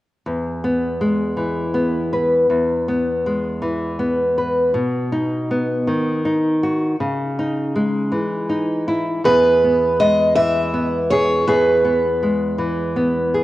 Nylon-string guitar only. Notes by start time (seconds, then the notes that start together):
0.26 E2
0.64 B3
1.01 G#3
1.37 E3
1.74 B3
2.13 B4
2.50 E2
2.88 B3
3.26 G#3
3.62 E3
3.99 B3
4.38 B4
4.74 B2
5.12 D#4
5.51 B3
5.87 D#3
6.25 D#4
6.63 F#4
7.00 C#3
7.39 D#4
7.76 G#3
8.12 E3
8.49 D#4
8.88 E4
9.24 E2 G#4
9.64 B3
10.00 G#3
10.36 E3
10.74 B3
11.12 G#4
11.48 E2 G#4
11.85 B3
12.23 G#3
12.58 E3
12.96 B3
13.34 G#4